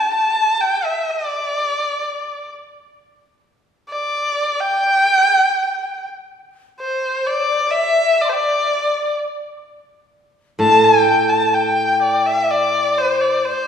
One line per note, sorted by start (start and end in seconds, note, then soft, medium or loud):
0.00 0.11 G3 medium
0.00 0.12 D5 soft
0.00 0.12 A5 medium
0.14 0.62 A5 medium
0.61 0.86 G5 medium
0.84 1.12 E5 medium
1.10 2.51 D5 medium
3.89 4.62 D5 medium
4.60 6.05 G5 loud
6.80 7.28 C5 medium
6.80 7.31 C5 medium
7.27 7.72 D5 medium
7.27 7.78 D5 medium
7.71 8.23 E5 medium
7.76 8.24 E5 medium
8.21 8.31 D5 medium
8.21 8.27 C6 soft
8.29 8.34 C5 medium
8.29 8.36 G5 soft
8.29 8.31 A5 soft
8.33 9.17 D5 medium
8.33 8.39 E5 soft
8.39 9.16 D5 medium
10.59 13.45 A2 medium
10.59 11.28 A5 medium
10.59 10.86 A5 loud
10.85 11.31 G5 medium
11.29 11.56 A5 medium
11.29 11.54 A5 medium
11.54 12.45 G5 medium
11.54 12.02 G5 medium
12.02 12.28 D5 medium
12.27 12.52 E5 medium
12.44 12.53 E5 medium
12.51 12.99 D5 medium
12.51 13.00 D5 medium
12.98 13.23 C5 medium
12.98 13.46 C5 medium
13.21 13.46 D5 medium
13.45 13.68 C5 medium